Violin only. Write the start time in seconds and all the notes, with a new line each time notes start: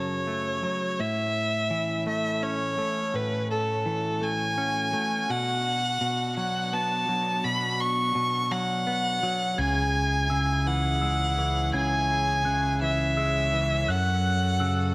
Already playing: C#5
0.99 E5
2.08 E5
2.43 C#5
3.15 B4
3.50 A4
4.23 G#5
5.30 F#5
6.36 F#5
6.73 A5
7.44 B5
7.80 C#6
8.52 F#5
9.59 G#5
10.67 F#5
11.75 G#5
12.83 E5
13.91 F#5